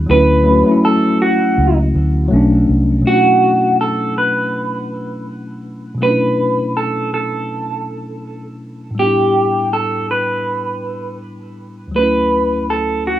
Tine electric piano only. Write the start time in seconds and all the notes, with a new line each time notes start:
0.07 F#3 A3
0.12 C#4 E4
0.43 F#3 A3
0.48 C#4 F#4
0.64 F#3 A3
0.69 C#4 E4
2.28 F#3 A3
2.33 C#4 D4
2.99 B2 F#3
3.05 A3 C#4
3.11 D4 E4
5.95 B2 F#3
6.01 A3 C#4
6.07 D4 E4
8.91 A2
8.95 G3 B3
9.03 D4 E4
11.88 D2 F#3
11.95 A3 C#4
12.03 E4